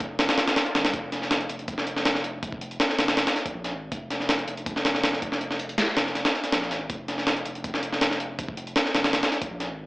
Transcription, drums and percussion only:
0.00 kick loud
0.00 closed hi-hat medium
0.19 snare loud
0.19 closed hi-hat medium
0.29 snare loud
0.29 closed hi-hat medium
0.38 snare loud
0.38 closed hi-hat medium
0.48 snare loud
0.48 closed hi-hat medium
0.56 snare loud
0.56 closed hi-hat medium
0.66 closed hi-hat soft
0.75 snare loud
0.75 closed hi-hat medium
0.85 snare loud
0.85 closed hi-hat medium
0.94 kick loud
0.94 closed hi-hat medium
1.12 snare soft
1.12 closed hi-hat medium
1.22 snare soft
1.31 snare loud
1.31 closed hi-hat medium
1.41 closed hi-hat soft
1.49 closed hi-hat medium
1.59 closed hi-hat soft
1.68 kick loud
1.68 closed hi-hat medium
1.78 snare medium
1.87 closed hi-hat medium
1.97 snare medium
2.05 snare loud
2.05 closed hi-hat medium
2.15 snare medium
2.24 closed hi-hat medium
2.43 kick loud
2.43 closed hi-hat medium
2.52 kick loud
2.61 closed hi-hat medium
2.71 closed hi-hat soft
2.80 snare loud
2.80 closed hi-hat medium
2.90 snare medium
2.99 snare loud
2.99 closed hi-hat medium
3.08 snare loud
3.08 closed hi-hat medium
3.17 snare loud
3.17 closed hi-hat medium
3.27 snare loud
3.27 closed hi-hat medium
3.36 snare soft
3.36 closed hi-hat medium
3.46 kick loud
3.46 closed hi-hat medium
3.64 snare soft
3.64 closed hi-hat medium
3.92 kick loud
3.92 closed hi-hat medium
4.10 snare soft
4.10 closed hi-hat medium
4.20 snare soft
4.29 snare loud
4.29 closed hi-hat medium
4.39 closed hi-hat soft
4.48 closed hi-hat medium
4.57 closed hi-hat soft
4.66 kick loud
4.66 closed hi-hat medium
4.76 snare medium
4.85 snare loud
4.85 closed hi-hat medium
4.95 snare medium
5.04 snare loud
5.04 closed hi-hat medium
5.13 snare soft
5.22 kick loud
5.22 closed hi-hat medium
5.32 snare medium
5.41 closed hi-hat medium
5.51 snare soft
5.59 closed hi-hat medium
5.69 closed hi-hat soft
5.78 snare loud
5.78 closed hi-hat medium
5.88 snare medium
5.97 snare loud
5.97 closed hi-hat medium
6.07 snare soft
6.15 snare soft
6.15 closed hi-hat medium
6.25 snare loud
6.25 closed hi-hat medium
6.34 snare soft
6.44 snare soft
6.44 closed hi-hat medium
6.52 snare loud
6.52 closed hi-hat medium
6.62 snare soft
6.71 snare soft
6.71 closed hi-hat medium
6.90 kick loud
6.90 closed hi-hat medium
7.08 snare soft
7.08 closed hi-hat medium
7.18 snare soft
7.27 snare loud
7.27 closed hi-hat medium
7.37 closed hi-hat soft
7.46 closed hi-hat medium
7.55 closed hi-hat soft
7.64 kick loud
7.64 closed hi-hat medium
7.74 snare medium
7.83 closed hi-hat medium
7.93 snare medium
8.01 snare loud
8.01 closed hi-hat medium
8.11 snare medium
8.20 closed hi-hat medium
8.39 kick loud
8.39 closed hi-hat medium
8.49 kick loud
8.57 closed hi-hat medium
8.67 closed hi-hat soft
8.76 snare loud
8.76 closed hi-hat medium
8.86 snare medium
8.95 snare loud
8.95 closed hi-hat medium
9.04 snare loud
9.04 closed hi-hat medium
9.13 snare loud
9.13 closed hi-hat medium
9.23 snare loud
9.23 closed hi-hat medium
9.32 snare soft
9.32 closed hi-hat medium
9.42 kick loud
9.42 closed hi-hat medium
9.60 snare soft
9.60 closed hi-hat medium

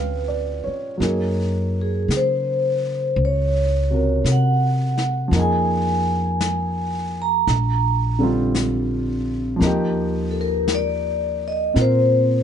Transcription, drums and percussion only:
1.01 brush sweep soft
1.01 snare soft
2.10 brush sweep soft
2.10 snare soft
2.10 hi-hat pedal soft
3.18 brush sweep soft
4.25 brush sweep soft
4.25 snare soft
4.25 hi-hat pedal soft
4.98 snare soft
5.33 brush sweep soft
5.33 snare soft
6.41 brush sweep soft
6.41 snare soft
6.41 hi-hat pedal soft
7.47 brush sweep soft
7.47 snare soft
8.55 brush sweep soft
8.55 snare soft
8.55 hi-hat pedal soft
9.61 brush sweep soft
9.61 snare soft
10.68 brush sweep soft
10.68 snare soft
10.68 hi-hat pedal soft
11.76 brush sweep soft
11.76 snare soft

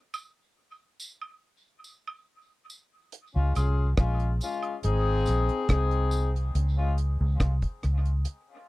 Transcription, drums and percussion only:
0.14 tambourine medium
0.14 high woodblock medium
1.00 tambourine medium
1.22 high woodblock medium
1.84 tambourine soft
2.08 high woodblock medium
2.70 tambourine medium
3.12 closed hi-hat medium
3.55 closed hi-hat medium
3.55 tambourine medium
3.55 high woodblock medium
3.97 kick loud
3.97 cross-stick loud
3.97 closed hi-hat medium
4.20 closed hi-hat soft
4.41 closed hi-hat medium
4.41 tambourine medium
4.63 closed hi-hat soft
4.63 high woodblock medium
4.83 closed hi-hat loud
5.26 closed hi-hat medium
5.26 tambourine soft
5.49 closed hi-hat soft
5.69 kick loud
5.69 cross-stick loud
5.69 closed hi-hat medium
5.91 closed hi-hat soft
6.11 closed hi-hat medium
6.11 tambourine medium
6.36 closed hi-hat soft
6.55 closed hi-hat medium
6.98 closed hi-hat medium
7.40 kick medium
7.40 cross-stick loud
7.40 closed hi-hat medium
7.62 kick medium
7.62 closed hi-hat medium
7.83 cross-stick medium
7.83 closed hi-hat medium
8.05 closed hi-hat soft
8.25 closed hi-hat loud

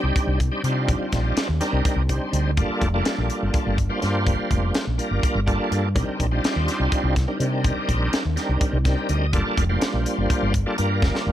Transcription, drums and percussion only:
0.16 kick loud
0.16 closed hi-hat medium
0.40 kick medium
0.40 closed hi-hat medium
0.64 closed hi-hat medium
0.88 kick loud
0.88 closed hi-hat medium
1.12 kick medium
1.12 snare soft
1.12 closed hi-hat medium
1.37 snare loud
1.37 closed hi-hat medium
1.61 snare soft
1.61 closed hi-hat medium
1.85 kick loud
1.85 closed hi-hat medium
2.09 kick medium
2.09 closed hi-hat medium
2.33 closed hi-hat medium
2.57 kick loud
2.57 closed hi-hat medium
2.82 kick medium
2.82 closed hi-hat medium
3.05 snare loud
3.05 closed hi-hat medium
3.30 closed hi-hat medium
3.54 kick loud
3.54 closed hi-hat medium
3.78 kick medium
3.78 closed hi-hat medium
4.02 snare soft
4.02 closed hi-hat medium
4.27 kick loud
4.27 closed hi-hat medium
4.51 kick medium
4.51 closed hi-hat medium
4.74 snare loud
4.74 closed hi-hat medium
4.99 closed hi-hat medium
5.23 kick loud
5.23 closed hi-hat medium
5.48 kick medium
5.48 closed hi-hat medium
5.72 closed hi-hat medium
5.96 kick loud
5.96 closed hi-hat medium
6.20 kick medium
6.20 closed hi-hat medium
6.44 snare loud
6.44 closed hi-hat medium
6.68 snare soft
6.68 closed hi-hat medium
6.92 kick medium
6.92 closed hi-hat medium
7.16 kick medium
7.16 snare soft
7.16 closed hi-hat medium
7.40 closed hi-hat medium
7.64 kick loud
7.64 closed hi-hat medium
7.89 kick medium
7.89 closed hi-hat medium
8.13 snare loud
8.13 closed hi-hat medium
8.37 snare soft
8.37 closed hi-hat medium
8.61 kick loud
8.61 closed hi-hat medium
8.85 kick medium
8.85 snare soft
8.85 closed hi-hat medium
9.09 closed hi-hat medium
9.33 kick loud
9.33 closed hi-hat medium
9.57 kick medium
9.57 closed hi-hat medium
9.82 snare loud
9.82 closed hi-hat medium
10.06 closed hi-hat medium
10.30 kick loud
10.30 closed hi-hat medium
10.54 kick medium
10.54 closed hi-hat medium
10.78 closed hi-hat medium
11.02 kick loud
11.02 snare medium
11.15 snare medium

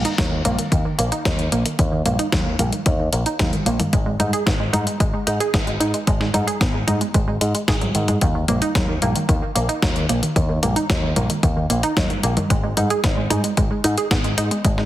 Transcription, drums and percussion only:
0.05 closed hi-hat medium
0.18 kick loud
0.18 snare loud
0.18 closed hi-hat medium
0.45 closed hi-hat medium
0.45 high conga medium
0.59 closed hi-hat medium
0.72 kick loud
0.72 closed hi-hat medium
0.99 closed hi-hat medium
1.12 closed hi-hat medium
1.25 kick loud
1.25 snare loud
1.25 closed hi-hat medium
1.39 closed hi-hat soft
1.52 closed hi-hat medium
1.66 closed hi-hat medium
1.79 kick loud
1.79 closed hi-hat medium
2.06 closed hi-hat medium
2.06 high conga medium
2.19 closed hi-hat medium
2.32 kick loud
2.32 snare loud
2.32 closed hi-hat medium
2.59 closed hi-hat medium
2.59 high conga medium
2.73 closed hi-hat soft
2.86 kick loud
2.86 closed hi-hat medium
3.13 closed hi-hat medium
3.26 closed hi-hat medium
3.39 kick loud
3.39 snare loud
3.39 closed hi-hat medium
3.53 closed hi-hat soft
3.53 high conga medium
3.66 closed hi-hat medium
3.80 closed hi-hat medium
3.80 high conga medium
3.93 kick loud
3.93 closed hi-hat medium
4.20 closed hi-hat medium
4.20 high conga medium
4.33 closed hi-hat soft
4.47 kick loud
4.47 snare loud
4.47 closed hi-hat medium
4.73 closed hi-hat medium
4.73 high conga medium
4.87 closed hi-hat soft
5.00 kick loud
5.00 closed hi-hat medium
5.27 closed hi-hat medium
5.40 closed hi-hat soft
5.54 kick loud
5.54 snare loud
5.54 closed hi-hat medium
5.67 closed hi-hat soft
5.81 closed hi-hat medium
5.94 closed hi-hat soft
6.07 kick loud
6.07 closed hi-hat medium
6.21 snare soft
6.34 closed hi-hat medium
6.34 high conga medium
6.48 closed hi-hat soft
6.61 kick loud
6.61 snare loud
6.61 closed hi-hat medium
6.88 closed hi-hat medium
6.88 high conga medium
7.01 closed hi-hat soft
7.14 kick loud
7.14 closed hi-hat medium
7.41 closed hi-hat medium
7.55 closed hi-hat soft
7.68 kick loud
7.68 snare loud
7.68 closed hi-hat medium
7.81 closed hi-hat soft
7.81 high conga medium
7.95 closed hi-hat medium
8.08 closed hi-hat soft
8.08 high conga medium
8.21 kick loud
8.21 closed hi-hat medium
8.48 closed hi-hat medium
8.48 high conga medium
8.62 closed hi-hat soft
8.75 kick loud
8.75 snare loud
8.75 closed hi-hat medium
9.02 closed hi-hat medium
9.02 high conga medium
9.16 closed hi-hat soft
9.29 kick loud
9.29 closed hi-hat medium
9.56 closed hi-hat medium
9.69 closed hi-hat soft
9.82 kick loud
9.82 snare loud
9.82 closed hi-hat medium
9.96 closed hi-hat soft
10.09 closed hi-hat medium
10.23 closed hi-hat soft
10.36 kick loud
10.36 closed hi-hat medium
10.63 closed hi-hat medium
10.63 high conga medium
10.76 closed hi-hat medium
10.90 kick loud
10.90 snare loud
10.90 closed hi-hat medium
11.16 closed hi-hat medium
11.16 high conga medium
11.30 closed hi-hat soft
11.43 kick loud
11.43 closed hi-hat medium
11.70 closed hi-hat medium
11.83 closed hi-hat soft
11.97 kick loud
11.97 snare loud
11.97 closed hi-hat medium
12.10 closed hi-hat soft
12.10 high conga medium
12.23 closed hi-hat medium
12.37 closed hi-hat medium
12.37 high conga medium
12.50 kick loud
12.50 closed hi-hat medium
12.77 closed hi-hat medium
12.77 high conga medium
12.90 closed hi-hat medium
13.04 kick loud
13.04 snare loud
13.04 closed hi-hat medium
13.30 closed hi-hat medium
13.30 high conga medium
13.44 closed hi-hat medium
13.57 kick loud
13.57 closed hi-hat medium
13.84 closed hi-hat medium
13.98 closed hi-hat medium
14.11 kick loud
14.11 snare loud
14.11 closed hi-hat medium
14.24 closed hi-hat soft
14.38 closed hi-hat medium
14.51 closed hi-hat medium
14.65 kick loud
14.65 closed hi-hat medium
14.78 snare soft

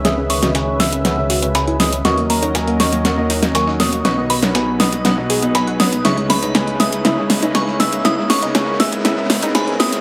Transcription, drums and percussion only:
0.05 snare medium
0.05 closed hi-hat medium
0.30 open hi-hat loud
0.30 open hi-hat medium
0.43 snare soft
0.43 closed hi-hat medium
0.55 snare loud
0.55 closed hi-hat medium
0.80 snare medium
0.80 closed hi-hat medium
0.80 open hi-hat loud
0.93 closed hi-hat medium
1.05 snare medium
1.05 closed hi-hat soft
1.05 closed hi-hat medium
1.30 closed hi-hat medium
1.30 open hi-hat loud
1.43 closed hi-hat medium
1.55 snare loud
1.55 closed hi-hat medium
1.68 closed hi-hat soft
1.80 snare medium
1.80 closed hi-hat medium
1.80 open hi-hat loud
1.93 closed hi-hat medium
2.05 snare medium
2.05 closed hi-hat soft
2.05 closed hi-hat medium
2.18 closed hi-hat soft
2.30 closed hi-hat medium
2.30 open hi-hat loud
2.43 closed hi-hat medium
2.55 snare loud
2.55 closed hi-hat medium
2.68 closed hi-hat soft
2.80 snare medium
2.80 closed hi-hat medium
2.80 open hi-hat loud
2.93 closed hi-hat medium
3.05 snare medium
3.05 closed hi-hat medium
3.05 closed hi-hat soft
3.30 closed hi-hat medium
3.30 open hi-hat loud
3.43 snare medium
3.43 closed hi-hat medium
3.55 snare loud
3.55 closed hi-hat medium
3.55 closed hi-hat soft
3.68 snare soft
3.80 snare medium
3.80 closed hi-hat medium
3.80 open hi-hat loud
3.93 closed hi-hat medium
4.05 snare medium
4.05 closed hi-hat soft
4.05 closed hi-hat medium
4.30 open hi-hat medium
4.30 open hi-hat loud
4.43 snare soft
4.43 snare medium
4.43 closed hi-hat medium
4.55 snare loud
4.55 closed hi-hat medium
4.80 snare medium
4.80 closed hi-hat medium
4.80 open hi-hat loud
4.92 closed hi-hat medium
5.05 snare medium
5.05 closed hi-hat soft
5.05 closed hi-hat medium
5.30 closed hi-hat medium
5.30 open hi-hat loud
5.42 closed hi-hat medium
5.55 snare loud
5.55 closed hi-hat medium
5.55 closed hi-hat soft
5.67 closed hi-hat soft
5.80 snare medium
5.80 closed hi-hat medium
5.80 open hi-hat loud
5.93 closed hi-hat medium
6.05 snare medium
6.05 closed hi-hat medium
6.05 closed hi-hat soft
6.17 closed hi-hat soft
6.30 snare medium
6.30 closed hi-hat medium
6.30 open hi-hat loud
6.42 snare soft
6.42 closed hi-hat medium
6.55 snare loud
6.55 snare medium
6.55 closed hi-hat medium
6.67 closed hi-hat soft
6.80 snare medium
6.80 closed hi-hat medium
6.80 open hi-hat loud
6.93 closed hi-hat medium
7.05 snare medium
7.05 closed hi-hat medium
7.30 snare medium
7.30 closed hi-hat medium
7.30 open hi-hat loud
7.43 closed hi-hat medium
7.55 snare loud
7.55 snare medium
7.55 closed hi-hat medium
7.55 closed hi-hat soft
7.67 snare soft
7.80 snare medium
7.80 closed hi-hat medium
7.80 open hi-hat loud
7.93 closed hi-hat medium
8.05 snare medium
8.05 closed hi-hat medium
8.30 snare medium
8.30 open hi-hat loud
8.30 open hi-hat medium
8.43 snare soft
8.43 closed hi-hat medium
8.55 snare loud
8.55 snare medium
8.55 closed hi-hat medium
8.80 snare medium
8.80 closed hi-hat medium
8.80 open hi-hat loud
8.93 closed hi-hat medium
9.05 snare medium
9.05 closed hi-hat medium
9.30 snare medium
9.30 closed hi-hat medium
9.30 open hi-hat loud
9.43 closed hi-hat medium
9.55 snare loud
9.55 snare medium
9.55 closed hi-hat medium
9.67 closed hi-hat soft
9.80 snare medium
9.80 closed hi-hat medium
9.80 open hi-hat loud
9.93 closed hi-hat medium

